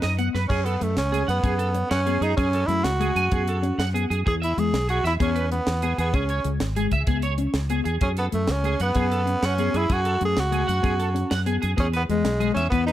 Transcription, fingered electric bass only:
0, 0, Header, 1, 2, 480
1, 0, Start_track
1, 0, Tempo, 313316
1, 763, Time_signature, 12, 3, 24, 8
1, 19796, End_track
2, 0, Start_track
2, 0, Title_t, "Fingered electric bass"
2, 0, Program_c, 0, 33
2, 49, Note_on_c, 0, 42, 76
2, 440, Note_off_c, 0, 42, 0
2, 526, Note_on_c, 0, 42, 72
2, 722, Note_off_c, 0, 42, 0
2, 760, Note_on_c, 0, 42, 104
2, 1156, Note_off_c, 0, 42, 0
2, 1249, Note_on_c, 0, 42, 89
2, 1444, Note_off_c, 0, 42, 0
2, 1484, Note_on_c, 0, 37, 82
2, 1878, Note_off_c, 0, 37, 0
2, 1962, Note_on_c, 0, 42, 82
2, 2160, Note_off_c, 0, 42, 0
2, 2195, Note_on_c, 0, 42, 84
2, 2790, Note_off_c, 0, 42, 0
2, 2923, Note_on_c, 0, 42, 82
2, 3318, Note_off_c, 0, 42, 0
2, 3387, Note_on_c, 0, 42, 83
2, 3591, Note_off_c, 0, 42, 0
2, 3641, Note_on_c, 0, 42, 105
2, 4037, Note_off_c, 0, 42, 0
2, 4104, Note_on_c, 0, 42, 99
2, 4310, Note_off_c, 0, 42, 0
2, 4350, Note_on_c, 0, 37, 90
2, 4750, Note_off_c, 0, 37, 0
2, 4833, Note_on_c, 0, 42, 86
2, 5035, Note_off_c, 0, 42, 0
2, 5084, Note_on_c, 0, 42, 93
2, 5675, Note_off_c, 0, 42, 0
2, 5794, Note_on_c, 0, 42, 82
2, 6193, Note_off_c, 0, 42, 0
2, 6286, Note_on_c, 0, 42, 80
2, 6483, Note_off_c, 0, 42, 0
2, 6536, Note_on_c, 0, 40, 104
2, 6926, Note_off_c, 0, 40, 0
2, 7007, Note_on_c, 0, 40, 98
2, 7203, Note_off_c, 0, 40, 0
2, 7246, Note_on_c, 0, 35, 88
2, 7640, Note_off_c, 0, 35, 0
2, 7714, Note_on_c, 0, 40, 82
2, 7916, Note_off_c, 0, 40, 0
2, 7975, Note_on_c, 0, 40, 89
2, 8562, Note_off_c, 0, 40, 0
2, 8686, Note_on_c, 0, 40, 85
2, 9080, Note_off_c, 0, 40, 0
2, 9163, Note_on_c, 0, 40, 86
2, 9361, Note_off_c, 0, 40, 0
2, 9402, Note_on_c, 0, 37, 99
2, 9797, Note_off_c, 0, 37, 0
2, 9878, Note_on_c, 0, 37, 94
2, 10078, Note_off_c, 0, 37, 0
2, 10112, Note_on_c, 0, 32, 92
2, 10512, Note_off_c, 0, 32, 0
2, 10604, Note_on_c, 0, 37, 83
2, 10801, Note_off_c, 0, 37, 0
2, 10837, Note_on_c, 0, 37, 92
2, 11432, Note_off_c, 0, 37, 0
2, 11546, Note_on_c, 0, 37, 82
2, 11948, Note_off_c, 0, 37, 0
2, 12034, Note_on_c, 0, 40, 82
2, 12235, Note_off_c, 0, 40, 0
2, 12279, Note_on_c, 0, 42, 108
2, 12675, Note_off_c, 0, 42, 0
2, 12760, Note_on_c, 0, 42, 93
2, 12959, Note_off_c, 0, 42, 0
2, 12998, Note_on_c, 0, 37, 93
2, 13395, Note_off_c, 0, 37, 0
2, 13481, Note_on_c, 0, 42, 84
2, 13680, Note_off_c, 0, 42, 0
2, 13712, Note_on_c, 0, 42, 91
2, 14308, Note_off_c, 0, 42, 0
2, 14438, Note_on_c, 0, 42, 88
2, 14834, Note_off_c, 0, 42, 0
2, 14920, Note_on_c, 0, 42, 81
2, 15118, Note_off_c, 0, 42, 0
2, 15162, Note_on_c, 0, 42, 101
2, 15556, Note_off_c, 0, 42, 0
2, 15650, Note_on_c, 0, 42, 95
2, 15844, Note_off_c, 0, 42, 0
2, 15887, Note_on_c, 0, 37, 94
2, 16279, Note_off_c, 0, 37, 0
2, 16368, Note_on_c, 0, 42, 88
2, 16563, Note_off_c, 0, 42, 0
2, 16605, Note_on_c, 0, 42, 98
2, 17195, Note_off_c, 0, 42, 0
2, 17331, Note_on_c, 0, 42, 89
2, 17721, Note_off_c, 0, 42, 0
2, 17821, Note_on_c, 0, 42, 86
2, 18010, Note_off_c, 0, 42, 0
2, 18053, Note_on_c, 0, 40, 115
2, 18442, Note_off_c, 0, 40, 0
2, 18525, Note_on_c, 0, 40, 98
2, 18720, Note_off_c, 0, 40, 0
2, 18757, Note_on_c, 0, 35, 92
2, 19152, Note_off_c, 0, 35, 0
2, 19241, Note_on_c, 0, 40, 88
2, 19438, Note_off_c, 0, 40, 0
2, 19477, Note_on_c, 0, 40, 95
2, 19796, Note_off_c, 0, 40, 0
2, 19796, End_track
0, 0, End_of_file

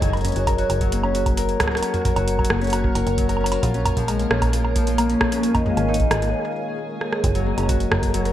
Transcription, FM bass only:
0, 0, Header, 1, 2, 480
1, 0, Start_track
1, 0, Key_signature, 6, "major"
1, 0, Tempo, 451128
1, 23, Time_signature, 4, 2, 24, 8
1, 8860, End_track
2, 0, Start_track
2, 0, Title_t, "FM bass"
2, 0, Program_c, 0, 39
2, 22, Note_on_c, 0, 30, 98
2, 326, Note_off_c, 0, 30, 0
2, 382, Note_on_c, 0, 30, 82
2, 686, Note_off_c, 0, 30, 0
2, 743, Note_on_c, 0, 30, 91
2, 1646, Note_off_c, 0, 30, 0
2, 2303, Note_on_c, 0, 30, 82
2, 2606, Note_off_c, 0, 30, 0
2, 2663, Note_on_c, 0, 30, 87
2, 3087, Note_off_c, 0, 30, 0
2, 3142, Note_on_c, 0, 30, 76
2, 3227, Note_off_c, 0, 30, 0
2, 3262, Note_on_c, 0, 30, 94
2, 3806, Note_off_c, 0, 30, 0
2, 3863, Note_on_c, 0, 34, 105
2, 4166, Note_off_c, 0, 34, 0
2, 4222, Note_on_c, 0, 34, 81
2, 4526, Note_off_c, 0, 34, 0
2, 4583, Note_on_c, 0, 34, 91
2, 5486, Note_off_c, 0, 34, 0
2, 6142, Note_on_c, 0, 32, 82
2, 6446, Note_off_c, 0, 32, 0
2, 6503, Note_on_c, 0, 32, 92
2, 6743, Note_off_c, 0, 32, 0
2, 7702, Note_on_c, 0, 30, 105
2, 8006, Note_off_c, 0, 30, 0
2, 8062, Note_on_c, 0, 30, 83
2, 8366, Note_off_c, 0, 30, 0
2, 8422, Note_on_c, 0, 30, 94
2, 8860, Note_off_c, 0, 30, 0
2, 8860, End_track
0, 0, End_of_file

